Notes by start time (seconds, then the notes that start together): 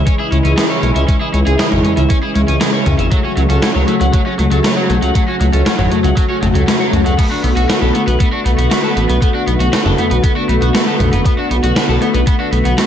Already playing: C#3 E3 G#3 E4
0.07 G#3 C#4, kick, closed hi-hat
0.19 E4 G#4
0.32 C#2 G#3 C#4, closed hi-hat
0.45 C#2 C#4 G#4, closed hi-hat
0.57 G#3 G#4, snare, closed hi-hat
0.70 C#4 C#5
0.83 B1 G#3 C#4, closed hi-hat
0.95 C#2 C#4 E5, closed hi-hat
1.08 G#3 C#4, kick, closed hi-hat
1.21 E4 G#4
1.34 C#2 G#3 C#4, closed hi-hat
1.46 C#2 G#4, closed hi-hat
1.59 G#3 G#4, snare, closed hi-hat
1.72 G#1 C#4 C#5, mid tom
1.85 G#3 C#4, closed hi-hat
1.97 C#2 C#4 E5, closed hi-hat
2.10 G#3 C#4, kick, closed hi-hat
2.23 E4 G#4
2.35 C#2 G#3 C#4, closed hi-hat
2.48 C#2 C#4 G#4, closed hi-hat
2.61 G#3 G#4, snare, closed hi-hat
2.74 C#4 C#5
2.86 C#2 G#3 C#4, closed hi-hat, mid tom
2.99 G#1 C#4 E5, closed hi-hat
3.12 F#3 A3 F#4, kick, closed hi-hat
3.24 C#4 F#4
3.37 C#2 F#3 A3, closed hi-hat
3.50 C#2 C#4 A4, closed hi-hat
3.62 A3 C#4, snare, closed hi-hat
3.75 C#2 F#3 C#5
3.88 F#3 A3, closed hi-hat
4.01 C#2 F#3 F#5, closed hi-hat
4.13 F#3 A3, kick, closed hi-hat
4.26 C#4 F#4
4.39 C#2 F#3 A3, closed hi-hat
4.52 C#2 F#3 A4, closed hi-hat
4.64 A3 C#4, snare, closed hi-hat
4.77 F#3 C#5
4.90 B1 F#3 A3, closed hi-hat
5.03 C#2 F#3 F#5, closed hi-hat
5.15 F#3 A3, kick, closed hi-hat
5.28 C#4 F#4
5.41 C#2 F#3 A3, closed hi-hat
5.53 C#2 C#4 A4, closed hi-hat
5.66 A3 C#4, snare, closed hi-hat
5.79 G#1 F#3 C#5, mid tom
5.92 F#3 A3, closed hi-hat
6.04 C#2 F#3 F#5, closed hi-hat
6.17 F#3 A3, kick, closed hi-hat
6.29 C#4 F#4
6.42 G#1 F#3 A3, closed hi-hat, mid tom
6.55 C#2 F#3 A4, closed hi-hat
6.68 A3 C#4, snare, closed hi-hat
6.80 F#3 C#5
6.93 C#2 F#3 A3, closed hi-hat, mid tom
7.05 C#2 F#3 F#5, closed hi-hat
7.18 D3 A3 B3, kick, closed hi-hat, crash
7.31 D4 F#4
7.44 B1 A3 B3, closed hi-hat
7.56 B1 F#4, closed hi-hat
7.69 A3 F#4, snare, closed hi-hat
7.82 B1 B3 A4
7.94 A3 B3, closed hi-hat
8.07 B1 B3 B4, closed hi-hat
8.20 A3 B3, kick, closed hi-hat
8.33 D4 F#4
8.45 B1 A3 B3, closed hi-hat
8.58 B1 B3 F#4, closed hi-hat
8.71 A3 F#4, snare, closed hi-hat
8.84 B3 A4
8.96 A1 A3 B3, closed hi-hat
9.09 B1 B3 B4, closed hi-hat
9.22 A3 B3, kick, closed hi-hat
9.35 D4 F#4
9.47 B1 A3 B3, closed hi-hat
9.60 B1 F#4, closed hi-hat
9.73 A3 F#4, snare, closed hi-hat
9.85 F#1 B3 A4, mid tom
9.98 A3 B3, closed hi-hat
10.11 B1 B3 B4, closed hi-hat
10.24 A3 B3, kick, closed hi-hat
10.37 D4 F#4
10.49 B1 A3 B3, closed hi-hat
10.62 B1 B3 F#4, closed hi-hat
10.75 A3 F#4, snare, closed hi-hat
10.87 B3 A4
11.00 B1 A3 B3, closed hi-hat, mid tom
11.13 F#1 B3 B4, closed hi-hat
11.25 A3 B3, kick, closed hi-hat
11.38 D4 F#4
11.51 B1 A3 B3, closed hi-hat
11.63 B1 F#4, closed hi-hat
11.76 A3 F#4, snare, closed hi-hat
11.89 B1 B3 A4
12.02 A3 B3, closed hi-hat
12.14 B1 B3 B4, closed hi-hat
12.27 A3 B3, kick, closed hi-hat
12.40 D4 F#4
12.52 B1 A3 B3, closed hi-hat
12.65 B1 B3 F#4, closed hi-hat
12.78 A3 F#4, snare, closed hi-hat